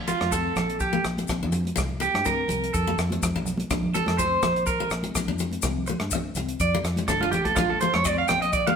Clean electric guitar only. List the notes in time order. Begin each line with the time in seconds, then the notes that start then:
0.08 F4
0.32 A4
0.81 G4
2.01 G4
2.26 A#4
2.74 A4
3.94 A4
4.18 C5
4.67 A#4
5.88 muted clean electric guitar stroke
6.13 muted clean electric guitar stroke
6.61 D5
7.08 A4
7.21 F4
7.31 G4
7.45 A4
7.56 F4
7.70 A4
7.81 C5
7.94 C#5
8.05 D5
8.18 F5
8.28 G5
8.42 D#5
8.53 D5
8.67 F5